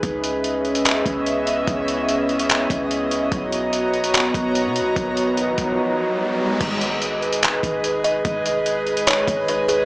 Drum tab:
CC |----------------|----------------|----------------|----------------|
HH |x-x-x-xxx-x-x-x-|x-x-x-xxx-x-x-x-|x-x-x-xxx-x-x-x-|x-x-x-x---------|
CP |--------x-------|--------x-------|--------x-------|----------------|
BD |o---------o-----|o---------o-----|o---------o-----|o-----o---------|

CC |x---------------|----------------|
HH |x-x-x-xxx-x-x-x-|x-x-x-xxx-x-x-x-|
CP |--------x-------|--------x-------|
BD |o---------o-----|o---------o-----|